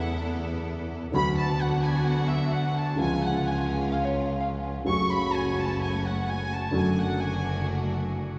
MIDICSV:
0, 0, Header, 1, 6, 480
1, 0, Start_track
1, 0, Key_signature, 3, "minor"
1, 0, Tempo, 465477
1, 1176, Time_signature, 4, 2, 24, 8
1, 8651, End_track
2, 0, Start_track
2, 0, Title_t, "Violin section"
2, 0, Program_c, 0, 48
2, 0, Note_on_c, 0, 78, 72
2, 225, Note_off_c, 0, 78, 0
2, 1180, Note_on_c, 0, 83, 104
2, 1400, Note_off_c, 0, 83, 0
2, 1413, Note_on_c, 0, 81, 100
2, 1636, Note_off_c, 0, 81, 0
2, 1648, Note_on_c, 0, 78, 87
2, 1875, Note_on_c, 0, 80, 79
2, 1890, Note_off_c, 0, 78, 0
2, 2123, Note_off_c, 0, 80, 0
2, 2125, Note_on_c, 0, 78, 83
2, 2357, Note_on_c, 0, 76, 81
2, 2368, Note_off_c, 0, 78, 0
2, 2602, Note_on_c, 0, 78, 84
2, 2604, Note_off_c, 0, 76, 0
2, 2846, Note_off_c, 0, 78, 0
2, 2847, Note_on_c, 0, 81, 76
2, 3084, Note_on_c, 0, 80, 87
2, 3088, Note_off_c, 0, 81, 0
2, 3310, Note_off_c, 0, 80, 0
2, 3337, Note_on_c, 0, 78, 85
2, 3574, Note_off_c, 0, 78, 0
2, 3576, Note_on_c, 0, 80, 70
2, 4055, Note_off_c, 0, 80, 0
2, 5029, Note_on_c, 0, 85, 86
2, 5249, Note_off_c, 0, 85, 0
2, 5265, Note_on_c, 0, 83, 97
2, 5504, Note_off_c, 0, 83, 0
2, 5513, Note_on_c, 0, 80, 83
2, 5748, Note_off_c, 0, 80, 0
2, 5767, Note_on_c, 0, 81, 78
2, 5995, Note_off_c, 0, 81, 0
2, 5999, Note_on_c, 0, 80, 84
2, 6215, Note_off_c, 0, 80, 0
2, 6244, Note_on_c, 0, 78, 77
2, 6474, Note_off_c, 0, 78, 0
2, 6490, Note_on_c, 0, 80, 88
2, 6717, Note_off_c, 0, 80, 0
2, 6738, Note_on_c, 0, 81, 76
2, 6961, Note_off_c, 0, 81, 0
2, 6977, Note_on_c, 0, 80, 79
2, 7200, Note_off_c, 0, 80, 0
2, 7216, Note_on_c, 0, 78, 77
2, 7440, Note_off_c, 0, 78, 0
2, 7440, Note_on_c, 0, 80, 78
2, 7910, Note_off_c, 0, 80, 0
2, 8651, End_track
3, 0, Start_track
3, 0, Title_t, "Hollow-body jazz guitar"
3, 0, Program_c, 1, 26
3, 4044, Note_on_c, 1, 77, 97
3, 4160, Note_off_c, 1, 77, 0
3, 4175, Note_on_c, 1, 73, 73
3, 4511, Note_off_c, 1, 73, 0
3, 4544, Note_on_c, 1, 77, 77
3, 4877, Note_off_c, 1, 77, 0
3, 8651, End_track
4, 0, Start_track
4, 0, Title_t, "String section"
4, 0, Program_c, 2, 48
4, 0, Note_on_c, 2, 59, 73
4, 0, Note_on_c, 2, 64, 65
4, 0, Note_on_c, 2, 69, 68
4, 1080, Note_off_c, 2, 59, 0
4, 1081, Note_off_c, 2, 64, 0
4, 1081, Note_off_c, 2, 69, 0
4, 1177, Note_on_c, 2, 59, 71
4, 1178, Note_on_c, 2, 62, 64
4, 1179, Note_on_c, 2, 66, 82
4, 2995, Note_off_c, 2, 59, 0
4, 2996, Note_off_c, 2, 62, 0
4, 2996, Note_off_c, 2, 66, 0
4, 3084, Note_on_c, 2, 56, 70
4, 3084, Note_on_c, 2, 61, 66
4, 3086, Note_on_c, 2, 65, 79
4, 4919, Note_off_c, 2, 56, 0
4, 4919, Note_off_c, 2, 61, 0
4, 4920, Note_off_c, 2, 65, 0
4, 5016, Note_on_c, 2, 57, 70
4, 5016, Note_on_c, 2, 61, 65
4, 5019, Note_on_c, 2, 66, 71
4, 6846, Note_off_c, 2, 57, 0
4, 6846, Note_off_c, 2, 61, 0
4, 6848, Note_off_c, 2, 66, 0
4, 6942, Note_on_c, 2, 57, 75
4, 6945, Note_on_c, 2, 66, 70
4, 6946, Note_on_c, 2, 62, 58
4, 8651, Note_off_c, 2, 57, 0
4, 8651, Note_off_c, 2, 62, 0
4, 8651, Note_off_c, 2, 66, 0
4, 8651, End_track
5, 0, Start_track
5, 0, Title_t, "Grand piano"
5, 0, Program_c, 3, 0
5, 0, Note_on_c, 3, 40, 62
5, 0, Note_on_c, 3, 52, 63
5, 0, Note_on_c, 3, 57, 45
5, 0, Note_on_c, 3, 59, 46
5, 0, Note_on_c, 3, 69, 57
5, 1076, Note_off_c, 3, 57, 0
5, 1077, Note_off_c, 3, 52, 0
5, 1078, Note_off_c, 3, 40, 0
5, 1082, Note_off_c, 3, 59, 0
5, 1086, Note_off_c, 3, 69, 0
5, 1156, Note_on_c, 3, 50, 64
5, 1173, Note_on_c, 3, 54, 51
5, 1175, Note_on_c, 3, 38, 68
5, 1184, Note_on_c, 3, 59, 52
5, 1198, Note_on_c, 3, 66, 60
5, 2993, Note_off_c, 3, 50, 0
5, 2993, Note_off_c, 3, 54, 0
5, 2994, Note_off_c, 3, 38, 0
5, 2998, Note_off_c, 3, 59, 0
5, 3005, Note_off_c, 3, 66, 0
5, 3055, Note_on_c, 3, 49, 55
5, 3071, Note_off_c, 3, 49, 0
5, 3076, Note_on_c, 3, 37, 63
5, 3077, Note_on_c, 3, 53, 45
5, 3082, Note_on_c, 3, 49, 68
5, 3091, Note_on_c, 3, 56, 48
5, 3103, Note_on_c, 3, 65, 60
5, 4915, Note_off_c, 3, 37, 0
5, 4915, Note_off_c, 3, 53, 0
5, 4918, Note_off_c, 3, 49, 0
5, 4922, Note_off_c, 3, 56, 0
5, 4928, Note_off_c, 3, 65, 0
5, 4997, Note_on_c, 3, 49, 49
5, 5008, Note_on_c, 3, 54, 67
5, 5020, Note_on_c, 3, 42, 59
5, 5024, Note_on_c, 3, 57, 47
5, 5041, Note_on_c, 3, 66, 59
5, 6837, Note_off_c, 3, 49, 0
5, 6848, Note_off_c, 3, 42, 0
5, 6848, Note_off_c, 3, 54, 0
5, 6850, Note_off_c, 3, 57, 0
5, 6858, Note_off_c, 3, 66, 0
5, 6920, Note_on_c, 3, 50, 57
5, 6932, Note_on_c, 3, 54, 65
5, 6936, Note_on_c, 3, 42, 67
5, 6942, Note_on_c, 3, 57, 49
5, 6960, Note_on_c, 3, 66, 58
5, 8651, Note_off_c, 3, 42, 0
5, 8651, Note_off_c, 3, 50, 0
5, 8651, Note_off_c, 3, 54, 0
5, 8651, Note_off_c, 3, 57, 0
5, 8651, Note_off_c, 3, 66, 0
5, 8651, End_track
6, 0, Start_track
6, 0, Title_t, "Double bass"
6, 0, Program_c, 4, 43
6, 0, Note_on_c, 4, 40, 63
6, 1084, Note_off_c, 4, 40, 0
6, 1179, Note_on_c, 4, 38, 62
6, 2996, Note_off_c, 4, 38, 0
6, 3087, Note_on_c, 4, 37, 70
6, 4920, Note_off_c, 4, 37, 0
6, 5018, Note_on_c, 4, 30, 64
6, 6847, Note_off_c, 4, 30, 0
6, 6945, Note_on_c, 4, 30, 69
6, 8651, Note_off_c, 4, 30, 0
6, 8651, End_track
0, 0, End_of_file